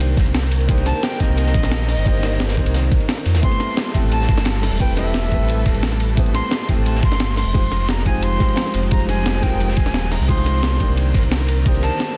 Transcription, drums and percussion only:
0.00 closed hi-hat, ride
0.17 kick, snare, closed hi-hat, ride
0.26 ride
0.34 snare, closed hi-hat, ride
0.43 snare
0.51 open hi-hat, ride
0.61 closed hi-hat
0.69 kick, closed hi-hat, ride
0.78 closed hi-hat, ride
0.86 snare, closed hi-hat, ride
1.03 snare, closed hi-hat, ride
1.20 kick, snare, closed hi-hat, ride
1.37 closed hi-hat, ride
1.46 snare
1.54 kick, snare, closed hi-hat, ride
1.63 snare
1.71 snare, closed hi-hat, ride
1.81 snare
1.89 snare, open hi-hat
1.97 closed hi-hat
2.06 kick, closed hi-hat, ride
2.15 closed hi-hat
2.23 snare, closed hi-hat, ride
2.31 snare
2.40 snare, closed hi-hat, ride
2.49 snare, ride
2.57 kick, snare, closed hi-hat
2.66 closed hi-hat, ride
2.74 snare, closed hi-hat, ride
2.83 snare
2.91 kick, closed hi-hat, ride
3.00 ride
3.09 snare, closed hi-hat, ride
3.18 snare
3.25 snare, open hi-hat, ride
3.35 snare, closed hi-hat, ride
3.43 kick, closed hi-hat, ride
3.51 closed hi-hat, ride
3.60 snare, closed hi-hat, ride, ride bell
3.77 snare, closed hi-hat, ride
3.94 kick, snare, closed hi-hat, ride, ride bell
4.12 closed hi-hat, ride
4.21 snare
4.28 kick, snare, closed hi-hat, ride, ride bell
4.37 snare
4.45 snare, closed hi-hat, ride
4.54 snare
4.63 snare, open hi-hat, ride bell
4.72 closed hi-hat
4.80 kick, closed hi-hat, ride
4.89 closed hi-hat
4.97 snare, closed hi-hat, ride, ride bell
5.14 snare, closed hi-hat, ride
5.24 snare
5.31 kick, closed hi-hat, ride, ride bell
5.49 closed hi-hat, ride
5.66 kick, snare, closed hi-hat, ride, ride bell
5.74 ride
5.83 snare, closed hi-hat, ride
5.92 snare
6.00 open hi-hat, ride, ride bell
6.09 closed hi-hat
6.17 kick, closed hi-hat, ride
6.26 closed hi-hat, ride
6.34 snare, closed hi-hat, ride, ride bell
6.51 snare, closed hi-hat, ride
6.69 kick, snare, closed hi-hat, ride, ride bell
6.86 closed hi-hat, ride
6.95 snare
7.03 kick, snare, closed hi-hat, ride, ride bell
7.12 snare
7.20 snare, closed hi-hat, ride
7.29 snare
7.37 snare, open hi-hat, ride bell
7.46 closed hi-hat
7.54 kick, closed hi-hat, ride
7.63 closed hi-hat
7.72 snare, closed hi-hat, ride, ride bell
7.88 snare, closed hi-hat, ride
7.97 snare
8.06 kick, closed hi-hat, ride, ride bell
8.22 closed hi-hat, ride
8.40 kick, snare, closed hi-hat, ride, ride bell
8.48 ride
8.56 snare, closed hi-hat, ride
8.66 snare
8.74 open hi-hat, ride, ride bell
8.83 closed hi-hat
8.91 kick, closed hi-hat, ride
9.00 closed hi-hat, ride
9.09 snare, closed hi-hat, ride, ride bell
9.26 snare, closed hi-hat, ride
9.43 kick, snare, closed hi-hat, ride, ride bell
9.60 closed hi-hat, ride
9.68 snare
9.76 kick, snare, closed hi-hat, ride, ride bell
9.86 snare
9.94 snare, closed hi-hat, ride
10.04 snare
10.12 snare, open hi-hat, ride bell
10.20 closed hi-hat
10.29 kick, closed hi-hat, ride
10.38 closed hi-hat
10.46 snare, closed hi-hat, ride, ride bell
10.63 snare, closed hi-hat, ride
10.72 snare
10.80 kick, closed hi-hat, ride, ride bell
10.97 closed hi-hat, ride
11.14 kick, snare, closed hi-hat, ride, ride bell
11.23 ride
11.31 snare, closed hi-hat, ride
11.40 snare
11.48 open hi-hat, ride, ride bell
11.58 closed hi-hat
11.66 kick, closed hi-hat, ride
11.75 closed hi-hat, ride
11.83 snare, closed hi-hat, ride, ride bell
12.00 snare, closed hi-hat, ride

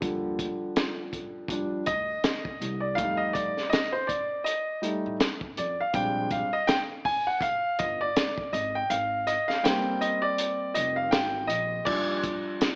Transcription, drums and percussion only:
0.02 kick, closed hi-hat
0.39 kick, closed hi-hat
0.76 snare, closed hi-hat
1.13 kick, closed hi-hat
1.48 kick, closed hi-hat
1.86 kick, closed hi-hat
2.24 snare, closed hi-hat
2.45 kick
2.62 closed hi-hat
2.98 kick, closed hi-hat
3.35 kick, closed hi-hat
3.57 snare
3.73 snare, closed hi-hat
4.09 kick, closed hi-hat
4.46 closed hi-hat
4.83 closed hi-hat
5.20 snare, closed hi-hat
5.41 kick
5.57 closed hi-hat
5.94 kick, closed hi-hat
6.31 kick, closed hi-hat
6.68 snare, closed hi-hat
7.05 kick, open hi-hat
7.41 kick, closed hi-hat
7.79 kick, closed hi-hat
8.16 snare, closed hi-hat
8.38 kick
8.54 closed hi-hat
8.90 closed hi-hat
9.27 closed hi-hat
9.49 snare
9.65 snare, closed hi-hat
10.02 closed hi-hat
10.38 closed hi-hat
10.75 closed hi-hat
11.12 snare, closed hi-hat
11.50 closed hi-hat
11.86 kick, crash
12.23 kick, closed hi-hat
12.61 snare, closed hi-hat

